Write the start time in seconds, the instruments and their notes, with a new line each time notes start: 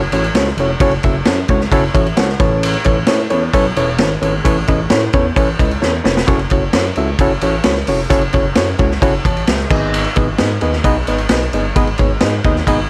0.12 analog synth bass A1, reed electric piano C#4 E4 F#4 A4 C#5, ride
0.24 ride
0.34 analog synth bass C#2, reed electric piano C#4 E4 F#4 A4 C#5, snare, ride
0.46 snare
0.57 analog synth bass F1, reed electric piano C#4 E4 F#4 A4 C#5, ride
0.80 analog synth bass F#1, reed electric piano C#4 E4 F#4 A4 C#5, kick, ride
0.91 ride
1.03 analog synth bass F#1, reed electric piano C#4 E4 F#4 A4 E5, kick, ride
1.25 analog synth bass F#2, reed electric piano C#4 E4 F#4 A4 C#5, snare, ride
1.48 analog synth bass C#2, reed electric piano C#4 E4 F#4 A4 C#5, kick, ride
1.61 snare
1.72 analog synth bass F#1, reed electric piano C#4 E4 F#4 A4 C#5, kick, ride
1.94 analog synth bass A1, reed electric piano C#4 E4 F#4 A4 C#5 E5, kick, ride
2.06 ride
2.17 analog synth bass C#2, reed electric piano C#4 E4 F#4 A4 C#5 F#5, snare, ride
2.29 snare
2.40 analog synth bass A1, reed electric piano A2 C#4 E4 A4 B4 C#5 A5, kick, ride
2.63 ride
2.73 ride
2.84 analog synth bass A1, reed electric piano C#4 E4 A4 B4 C#5, kick, ride
3.07 analog synth bass A2, reed electric piano C#4 E4 A4 B4 C#5, snare, ride
3.30 analog synth bass E2, reed electric piano C#4 E4 A4 B4 C#5, ride
3.54 analog synth bass B1, reed electric piano C#4 E4 A4 B4 C#5, kick, ride
3.76 analog synth bass E1, reed electric piano C#4 E4 A4 B4 C#5, ride
3.98 analog synth bass G#1, reed electric piano C#4 E4 A4 B4 C#5, snare, ride
4.22 analog synth bass G#1, reed electric piano A2 C#4 E4 A4 B4 C#5, ride
4.45 analog synth bass A1, reed electric piano C#4 E4 A4 B4 C#5, kick, ride
4.67 analog synth bass A1, reed electric piano C#4 E4 A4 B4 D#5, kick, ride
4.90 analog synth bass A2, reed electric piano C#4 E4 A4 B4 C#5, snare, ride
5.13 analog synth bass E2, reed electric piano C#4 E4 A4 B4 C#5, kick, ride
5.36 analog synth bass A1, reed electric piano C#4 E4 A4 B4 C#5, kick, ride
5.59 analog synth bass C#2, reed electric piano C#4 E4 A4 B4 D#5, kick, ride
5.71 ride
5.82 analog synth bass E2, reed electric piano C#4 E4 A4 B4 C#5, snare
6.04 analog synth bass F1, reed electric piano C#4 E4 A4 B4 C#5, snare
6.17 snare
6.27 analog synth bass F#1, reed electric piano C#4 E4 F#4 A4 C#5, kick, ride
6.39 ride
6.50 analog synth bass F#1, reed electric piano C#4 E4 F#4 A4 C#5, kick, ride
6.73 analog synth bass F#2, reed electric piano C#4 E4 F#4 A4 C#5, snare, ride
6.95 analog synth bass C#2, reed electric piano C#4 E4 F#4 A4 E5, ride
7.19 analog synth bass F#1, reed electric piano C#4 E4 F#4 A4 C#5, kick, ride
7.41 analog synth bass A1, reed electric piano C#4 E4 F#4 A4 C#5, ride
7.63 analog synth bass C#2, reed electric piano C#4 E4 F#4 A4 C#5, snare, ride
7.75 snare
7.87 analog synth bass F1, reed electric piano C#4 E4 F#4 A4 C#5, open hi-hat, ride
8.10 analog synth bass F#1, reed electric piano C#4 E4 F#4 A4 C#5, kick, hi-hat pedal, ride
8.21 ride
8.33 analog synth bass F#1, reed electric piano C#4 E4 F#4 A4 C#5, kick, ride
8.55 analog synth bass F#2, reed electric piano C#4 E4 F#4 A4 C#5, snare, ride
8.79 analog synth bass C#2, reed electric piano C#4 E4 F#4 A4 C#5, kick, ride
8.91 snare
9.02 analog synth bass F#1, reed electric piano C#4 E4 F#4 A4 C#5, kick, ride
9.25 analog synth bass A1, reed electric piano C#5 A5, kick, ride
9.37 ride
9.47 analog synth bass C#2, reed electric piano G#4 E5, snare, ride
9.59 snare
9.71 analog synth bass G#1, reed electric piano G#2 B3 D#4 G#4 B4 D#5, kick, crash
9.94 ride
10.04 ride
10.16 analog synth bass G#1, reed electric piano B3 D#4 G#4 B4 D#5, kick, ride
10.38 analog synth bass G#2, reed electric piano B3 D#4 G#4 B4 D#5, snare, ride
10.61 analog synth bass D#2, reed electric piano B3 D#4 G#4 B4 D#5, ride
10.73 snare
10.84 analog synth bass B1, reed electric piano B3 D#4 G#4 B4 D#5, kick, ride
11.07 analog synth bass G#1, reed electric piano B3 D#4 G#4 B4 D#5, ride
11.18 ride
11.29 analog synth bass B1, reed electric piano B3 D#4 G#4 B4 D#5, snare, ride
11.41 snare
11.53 analog synth bass G1, reed electric piano G#2 B3 D#4 G#4 B4 D#5, ride
11.76 analog synth bass G#1, reed electric piano B3 D#4 G#4 B4 D#5, kick, ride
11.87 ride
11.98 analog synth bass G#1, reed electric piano B3 D#4 G#4 B4 C#5, kick, ride
12.20 analog synth bass G#2, reed electric piano B3 D#4 G#4 B4 D#5, snare, ride
12.44 analog synth bass D#2, reed electric piano B3 D#4 G#4 B4 D#5, kick, ride
12.56 snare
12.67 analog synth bass G#1, reed electric piano B3 D#4 G#4 B4 D#5, kick, ride